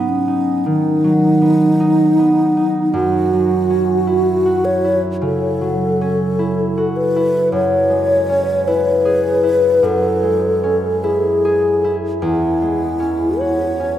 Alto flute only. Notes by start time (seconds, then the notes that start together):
Already playing: B3
0.09 C#4
0.65 D#4
2.94 F#4
4.65 C#5
5.23 A4
6.96 B4
7.53 C#5
8.68 B4
9.85 A4
11.04 G#4
12.21 E4
13.39 C#5